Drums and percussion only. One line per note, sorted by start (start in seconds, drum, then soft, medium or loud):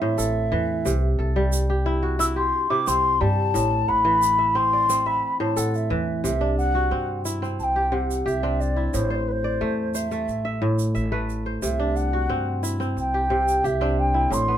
0.19 shaker medium
0.86 shaker medium
1.53 shaker medium
2.20 shaker medium
2.87 shaker medium
3.55 shaker medium
4.22 shaker medium
4.90 shaker medium
5.57 shaker medium
5.74 shaker soft
6.25 shaker medium
6.59 shaker soft
7.26 shaker medium
7.44 shaker soft
7.60 shaker soft
8.11 shaker soft
8.28 shaker soft
8.61 shaker soft
8.94 shaker medium
9.95 shaker medium
10.11 shaker soft
10.28 shaker soft
10.79 shaker soft
10.95 shaker soft
11.29 shaker soft
11.63 shaker medium
11.96 shaker soft
12.64 shaker medium
12.81 shaker soft
12.98 shaker soft
13.48 shaker soft
13.65 shaker soft
14.33 shaker medium